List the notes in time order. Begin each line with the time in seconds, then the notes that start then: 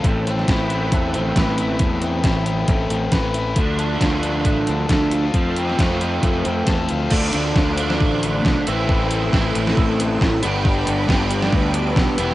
Already playing: A3 C4 A4
0.03 A1 A2 E3 A3 C4, kick, closed hi-hat
0.27 C4, closed hi-hat
0.39 snare
0.48 A1 E4, kick, snare, closed hi-hat
0.70 C4, closed hi-hat
0.92 E2 A3, kick, closed hi-hat
1.14 A1 C4, closed hi-hat
1.36 A1 B4, kick, snare, closed hi-hat
1.58 E4, closed hi-hat
1.79 E2 A2, kick, closed hi-hat
2.02 C4, closed hi-hat
2.24 A1 E4, kick, snare, closed hi-hat
2.46 C4, closed hi-hat
2.68 A1 A3, kick, closed hi-hat
2.90 A1 C4, closed hi-hat
3.12 A1 B4, kick, snare, closed hi-hat
3.34 E4, closed hi-hat
3.56 D2 D3 F3 A3 D4, kick, closed hi-hat
3.78 D4, closed hi-hat
4.00 D2 F4, kick, snare, closed hi-hat
4.22 D4, closed hi-hat
4.45 A1 A3, kick, closed hi-hat
4.67 D2 D4, closed hi-hat
4.89 D2 A4, kick, snare, closed hi-hat
5.11 F4, closed hi-hat
5.33 F2 F3 A3 C4, kick, closed hi-hat
5.56 C4, closed hi-hat
5.69 snare
5.79 F2 F4, kick, snare, closed hi-hat
6.01 C4, closed hi-hat
6.23 F2 A3, kick, closed hi-hat
6.45 F2 C4, closed hi-hat
6.67 E2 A4, kick, snare, closed hi-hat
6.89 D2 F4, closed hi-hat
7.10 D2 D3 F3 A3 D4 C5 F5 D6, kick, crash
7.14 F4
7.33 D2, closed hi-hat
7.56 D2, kick, snare
7.77 F3 A3 D4, closed hi-hat
7.90 snare
8.00 A1, kick
8.23 closed hi-hat
8.45 B1, kick, snare
8.66 A1 A2 E3 A3 C4 E4 A4 G5 C6, closed hi-hat
8.89 kick
9.11 closed hi-hat
9.33 A1 E3 C4 E4, kick, snare
9.55 A1, closed hi-hat
9.67 snare
9.77 A1, kick
10.00 closed hi-hat
10.21 A1, kick, snare
10.42 G1 G2 D3 G3 B3 D4 G4 B4 D6, closed hi-hat
10.65 kick
10.87 G1, closed hi-hat
11.08 G1 B3 D4 G4, kick, snare
11.31 closed hi-hat
11.42 snare
11.53 D2, kick
11.74 closed hi-hat
11.96 B1, kick, snare
12.17 E1 E3 G3 B3 E4 G4 E5, closed hi-hat
12.31 snare